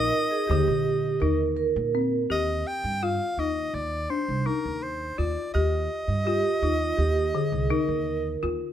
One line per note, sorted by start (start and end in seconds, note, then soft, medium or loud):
0.00 0.41 D#4 medium
0.00 0.33 A#4 medium
0.00 1.55 D#5 medium
0.31 0.41 G#4 medium
0.42 0.50 G#4 medium
0.47 0.66 D#2 medium
0.47 1.14 D3 medium
0.47 1.17 G4 medium
0.68 1.16 A#1 medium
1.20 1.70 D#2 medium
1.20 1.85 D#4 medium
1.20 1.55 A#4 medium
1.57 2.25 A#4 medium
1.76 2.24 A#2 medium
1.95 2.26 C4 medium
2.30 2.62 D#2 medium
2.30 2.93 G4 medium
2.30 2.69 D#5 medium
2.67 3.05 G5 medium
2.84 3.16 G2 medium
3.03 3.34 F4 medium
3.03 3.41 F5 medium
3.37 3.70 D#2 medium
3.37 4.02 D#4 medium
3.37 3.76 D#5 medium
3.73 4.06 D#2 medium
3.73 4.11 D5 medium
4.10 4.42 D4 medium
4.10 4.48 C5 medium
4.29 4.44 C2 medium
4.46 5.09 D#4 medium
4.46 4.84 A#4 medium
4.65 5.13 D#2 medium
4.83 5.19 C5 medium
5.18 5.35 D#2 medium
5.18 5.50 F4 medium
5.18 5.53 D5 medium
5.54 5.87 D#2 medium
5.54 6.18 G4 medium
5.54 8.39 D#5 medium
6.08 6.40 G2 medium
6.25 6.58 F4 medium
6.25 6.59 G4 medium
6.62 6.94 D#2 medium
6.62 7.26 D#4 medium
6.62 6.96 F4 medium
6.97 7.30 D#2 medium
6.97 7.31 G4 medium
7.34 7.66 D3 medium
7.34 7.72 G#4 medium
7.52 7.68 C2 medium
7.70 8.34 D#4 medium
7.70 8.56 A#4 medium
7.88 8.36 D#2 medium
8.43 8.59 D#2 medium
8.43 8.73 F4 medium